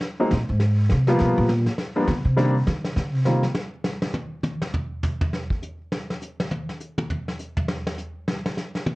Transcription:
0.01 brush sweep, snare
0.20 grand piano F#3 G#3 A#3 C4 D#4
0.31 upright bass A#2, snare
0.49 upright bass G#2
0.60 brush sweep, snare
0.90 upright bass C3, snare
1.07 grand piano F3 G3 A#3 B3 F4, snare
1.18 upright bass B2, brush sweep, snare
1.37 upright bass A#2
1.48 snare
1.66 snare
1.78 brush sweep, snare
1.96 grand piano F3 G3 A#3 B3 D4
2.07 upright bass D3, snare
2.25 upright bass C3
2.37 grand piano D#3 G3 A#3 C4 D4, brush sweep, snare
2.67 upright bass D#3, snare
2.84 snare
2.96 upright bass D3, brush sweep, snare
3.14 upright bass C3
3.25 grand piano D#3 G3 A#3 C4 F4, snare
3.43 snare
3.55 snare
3.84 snare, hi-hat pedal
4.02 snare
4.14 high tom
4.44 hi-hat pedal, high tom
4.62 snare
4.74 floor tom
5.03 floor tom, hi-hat pedal
5.21 floor tom
5.33 snare
5.50 kick
5.62 hi-hat pedal
5.92 snare
6.10 snare
6.22 hi-hat pedal
6.40 snare
6.51 high tom
6.69 snare
6.80 hi-hat pedal
6.98 high tom
7.10 floor tom
7.28 snare
7.39 hi-hat pedal
7.57 floor tom
7.68 snare
7.87 snare
7.98 hi-hat pedal
8.28 snare
8.45 snare
8.57 snare, hi-hat pedal
8.75 snare
8.86 high tom

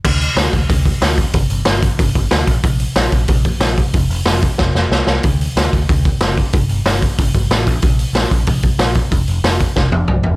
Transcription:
0.05 picked electric bass D2, kick, crash
0.21 open hi-hat
0.36 picked electric bass D2, snare, open hi-hat
0.53 picked electric bass D2, kick, open hi-hat
0.69 picked electric bass D2, kick, open hi-hat
0.85 kick, open hi-hat
1.01 picked electric bass D2, snare, open hi-hat
1.18 kick, open hi-hat
1.33 picked electric bass G1, kick, open hi-hat
1.50 picked electric bass G1, open hi-hat
1.65 picked electric bass G1, snare, open hi-hat
1.82 kick, open hi-hat
1.99 picked electric bass G1, kick, open hi-hat
2.15 picked electric bass G1, kick, open hi-hat
2.31 picked electric bass D2, snare, open hi-hat
2.47 picked electric bass A#1, kick, open hi-hat
2.63 picked electric bass A#1, kick, open hi-hat
2.80 open hi-hat
2.96 picked electric bass A#1, snare, open hi-hat
3.12 picked electric bass A#1, kick, open hi-hat
3.28 picked electric bass A#1, kick, open hi-hat
3.45 kick, open hi-hat
3.60 picked electric bass A#1, snare, open hi-hat
3.77 kick, open hi-hat
3.93 picked electric bass F1, kick, open hi-hat
4.09 picked electric bass F1, open hi-hat
4.26 picked electric bass F1, snare, open hi-hat
4.42 kick, open hi-hat
4.58 picked electric bass F1, kick, snare
4.75 picked electric bass F1, snare
4.91 picked electric bass C2, snare
5.07 picked electric bass C2, snare
5.23 picked electric bass D2, kick, open hi-hat
5.41 open hi-hat
5.56 picked electric bass D2, snare, open hi-hat
5.73 picked electric bass D2, kick, open hi-hat
5.89 picked electric bass D2, kick, open hi-hat
6.05 kick, open hi-hat
6.21 picked electric bass F#1, snare, open hi-hat
6.37 kick, open hi-hat
6.53 picked electric bass G1, kick, open hi-hat
6.69 picked electric bass G1, open hi-hat
6.86 picked electric bass G1, snare, open hi-hat
7.02 kick, open hi-hat
7.18 picked electric bass G1, kick, open hi-hat
7.34 picked electric bass G1, kick, open hi-hat
7.50 picked electric bass A1, snare, open hi-hat
7.67 picked electric bass A#1, kick, open hi-hat
7.82 picked electric bass A#1, kick, open hi-hat
7.99 open hi-hat
8.13 picked electric bass A#1, snare, open hi-hat
8.31 picked electric bass A#1, kick, open hi-hat
8.47 picked electric bass A#1, kick, open hi-hat
8.63 kick, open hi-hat
8.79 picked electric bass A#1, snare, open hi-hat
8.95 kick, open hi-hat
9.11 picked electric bass F1, kick, open hi-hat
9.28 picked electric bass F1, open hi-hat
9.44 picked electric bass F1, snare, open hi-hat
9.60 kick, open hi-hat
9.76 picked electric bass F1, kick, snare
9.92 picked electric bass F1, high tom
10.08 picked electric bass C2, mid tom
10.23 picked electric bass F1, floor tom

